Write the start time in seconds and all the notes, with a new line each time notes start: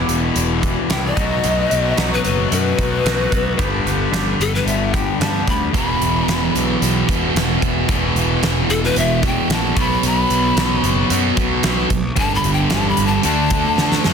Already playing: E2 B2 E3 G3 D4 E4
0.09 E1, closed hi-hat
0.36 E1, closed hi-hat
0.61 E3 G3 D4 E4, kick, closed hi-hat
0.89 C2 E3 G3 D4 E4 G5, snare, closed hi-hat
1.06 D#5
1.16 B1 B2 F#3 A3 B3 D#4 F#4, kick, closed hi-hat
1.44 B1 B2 F#3 A3 D#4 F#4, closed hi-hat
1.70 B1 A3 D#4 F#4, closed hi-hat
1.96 B1 B2 F#3 A3 D#4 F#4, snare, closed hi-hat
2.13 B4
2.25 F#1 B4, closed hi-hat
2.51 F#2 B4, closed hi-hat
2.77 B1 A3 D#4 F#4, kick, closed hi-hat
3.03 B1 F#3 A3 D#4 F#4, snare, closed hi-hat
3.30 B1 A3 D#4 F#4, kick, closed hi-hat
3.57 G1 G2 D3 G3 B3 D4 G4, kick, closed hi-hat
3.85 G1 G3 B3 D4 G4, closed hi-hat
4.11 G1 G2 D3 G3 B3 D4 G4, snare, closed hi-hat
4.39 G1 A4, closed hi-hat
4.55 B4, snare
4.66 G1 E5, closed hi-hat
4.93 G3 B3 D4 G4 G5, kick, closed hi-hat
5.20 G2 G3 B3 D4 G4 A5, snare, closed hi-hat
5.46 D2 G3 B3 D4 G4 B5, kick, closed hi-hat
5.73 E1 E2 B2 E3 B5, kick, closed hi-hat
6.01 E1, closed hi-hat
6.28 E1, snare, closed hi-hat
6.55 B1, closed hi-hat
6.82 B1, closed hi-hat
7.07 E1 E2 B2 E3, kick, closed hi-hat
7.34 E1 E2 B2 E3, snare, closed hi-hat
7.62 E1, kick, closed hi-hat
7.88 E1 E2 B2 E3, kick, closed hi-hat
8.15 E1, closed hi-hat
8.42 E1, snare, closed hi-hat
8.69 E1 A4, closed hi-hat
8.84 B4, snare
8.96 E1 E5, closed hi-hat
9.22 E2 B2 E3, kick, closed hi-hat
9.26 G5
9.49 A#1 E2 B2 E3 A5, snare, closed hi-hat
9.75 B1 B2 F#3 B3, kick, closed hi-hat
9.80 B5
10.03 B1 B5, closed hi-hat
10.30 B1, closed hi-hat
10.56 B1, snare, closed hi-hat
10.83 F#1, closed hi-hat
11.10 F#2 B2 F#3 B3, closed hi-hat
11.37 B1 B2 F#3 B3, kick, closed hi-hat
11.63 B1, snare, closed hi-hat
11.90 B1, kick, closed hi-hat
12.16 G1 G2 D3 G3 A5, kick, closed hi-hat
12.35 B5
12.44 G1, closed hi-hat
12.53 G5
12.70 G1 A5, snare, closed hi-hat
12.89 B5
12.97 G1, closed hi-hat
13.07 A5
13.23 D2 D3 A3 D4 A5, closed hi-hat
13.50 kick, closed hi-hat
13.78 D3, snare
13.92 snare
14.04 F#2, snare